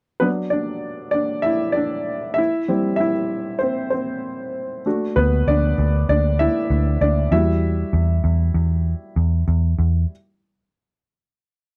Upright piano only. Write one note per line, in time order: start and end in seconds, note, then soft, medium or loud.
0.20 1.10 F#3 soft
0.20 0.29 B3 medium
0.20 0.51 D4 soft
0.20 0.27 B4 medium
0.50 1.11 D4 medium
0.50 1.09 D5 medium
1.11 1.44 D4 medium
1.11 1.45 D5 medium
1.42 1.75 E4 medium
1.42 1.73 E5 medium
1.72 2.32 D5 medium
1.77 2.34 D4 medium
2.34 2.95 E5 medium
2.38 2.68 E4 medium
2.68 3.10 G3 soft
2.68 3.10 C4 soft
2.68 2.99 E4 medium
2.96 3.62 E5 medium
3.00 3.58 E4 medium
3.59 3.91 C4 soft
3.59 3.89 C5 medium
3.90 4.82 C4 soft
3.90 4.80 C5 medium
4.86 5.74 A3 soft
4.86 5.48 D4 soft
4.86 5.75 F#4 soft
5.16 5.46 B3 medium
5.16 5.48 B4 medium
5.48 6.06 D4 medium
5.48 6.05 D5 medium
6.09 6.38 D4 medium
6.09 6.38 D5 medium
6.39 6.98 E4 medium
6.39 6.97 E5 medium
7.01 7.31 D4 medium
7.01 7.33 D5 medium
7.32 8.21 G3 soft
7.32 9.45 E4 medium
7.32 8.21 F#4 soft
7.32 9.44 E5 medium